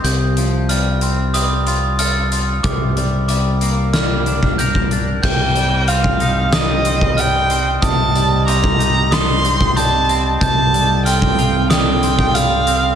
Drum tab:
CC |----------------|----------------|x---------------|----------------|
HH |x-x-x-x-x-x-x-x-|x-x-x-x-x-x-x-x-|--x-x-x-x-x-x-x-|x-x-x-x-x-x-x-x-|
SD |----------------|--------o-------|--------o-------|--------o-------|
BD |----------------|o----------o-o--|o----o-----o----|o----o-----o----|

CC |----------------|
HH |x-x-x-x-x-x-x-x-|
SD |--------o-------|
BD |o----o-----o----|